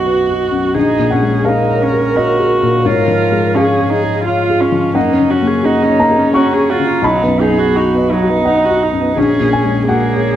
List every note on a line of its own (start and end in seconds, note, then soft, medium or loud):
0.00 0.72 B1 soft
0.00 0.51 F#2 soft
0.00 0.78 B3 soft
0.00 0.29 F#4 soft
0.00 0.75 F#4 medium
0.00 0.06 B4 medium
0.00 0.71 D#5 medium
0.06 0.77 F#4 soft
0.06 0.43 B4 soft
0.29 0.66 F#4 soft
0.51 0.75 F#2 soft
0.75 2.81 A#1 soft
0.75 1.13 D#4 medium
0.75 1.47 G#4 soft
0.99 1.36 A#2 soft
1.10 1.49 C#4 soft
1.10 1.43 F#5 medium
1.22 1.60 G#3 soft
1.45 1.84 D#4 soft
1.45 1.83 G#4 soft
1.45 2.85 A#4 soft
1.45 2.11 F5 medium
1.69 2.07 C#5 soft
1.82 2.17 C#4 soft
1.92 2.30 G#4 soft
2.16 2.87 F#4 medium
2.16 2.53 C#5 soft
2.16 2.82 D#5 medium
2.39 2.76 G#4 soft
2.63 2.86 A#2 soft
2.85 4.91 G#2 soft
2.85 3.56 F4 medium
2.85 3.58 A#4 soft
2.85 3.52 C#5 medium
3.08 3.46 F3 soft
3.32 3.70 G#3 soft
3.54 3.91 C#4 medium
3.54 3.93 G#4 soft
3.54 3.90 G#4 soft
3.54 4.91 F5 medium
3.79 4.17 C#5 soft
3.89 4.23 D#4 soft
3.89 4.25 G#4 medium
4.03 4.40 G#4 soft
4.24 4.62 F4 medium
4.24 4.94 F4 soft
4.24 4.63 C#5 soft
4.50 4.86 G#4 soft
4.60 4.96 C#4 medium
4.72 4.95 F3 soft
4.95 7.00 F#2 medium
4.95 5.15 A#3 soft
4.95 5.32 D#4 medium
4.95 5.95 F#5 medium
5.13 5.32 C#4 soft
5.17 5.55 C#3 soft
5.30 5.65 C#4 medium
5.30 5.49 F#4 soft
5.42 5.79 A#3 soft
5.47 5.67 G#4 soft
5.63 6.34 D#4 medium
5.63 5.84 F#4 soft
5.63 6.01 G#4 soft
5.82 6.02 C#4 medium
5.87 6.25 C#5 soft
6.00 6.20 A#3 soft
6.00 6.32 A#5 medium
6.10 6.48 G#4 soft
6.18 6.37 C#4 soft
6.33 6.71 C#4 medium
6.33 6.54 F#4 soft
6.33 6.71 C#5 soft
6.33 7.00 C#6 medium
6.53 6.71 G#4 soft
6.53 6.94 G#4 soft
6.69 7.06 F4 medium
6.69 6.89 F#4 soft
6.79 7.03 C#3 soft
6.87 7.05 C#4 soft
7.02 9.12 B1 medium
7.02 7.25 F#3 medium
7.02 7.42 D#4 medium
7.02 8.42 B5 medium
7.23 7.65 F#2 soft
7.23 7.42 B3 soft
7.41 7.60 D#4 medium
7.41 7.77 G#4 medium
7.50 7.88 B3 soft
7.58 7.78 F#4 soft
7.75 7.96 D#4 soft
7.75 8.13 F#4 soft
7.75 8.12 F#4 medium
7.94 8.14 B3 soft
7.94 8.36 D#5 soft
8.11 8.31 F#3 soft
8.11 9.18 D#4 medium
8.22 8.60 F#4 soft
8.30 8.48 B3 soft
8.45 8.67 D#4 soft
8.45 8.84 D#5 soft
8.45 9.12 F#5 medium
8.65 8.84 F#4 soft
8.69 9.07 F#4 soft
8.83 9.03 D#4 soft
8.92 9.16 F#2 soft
9.01 9.17 B3 soft
9.17 10.36 A#1 medium
9.17 9.88 C#4 medium
9.17 9.85 G#4 medium
9.40 9.78 A#2 soft
9.53 9.86 G#5 medium
9.65 10.03 G#3 soft
9.88 10.36 A#3 medium
9.88 10.27 F#4 soft
9.88 10.36 G#4 soft
9.88 10.36 F#5 medium
10.13 10.36 C#5 soft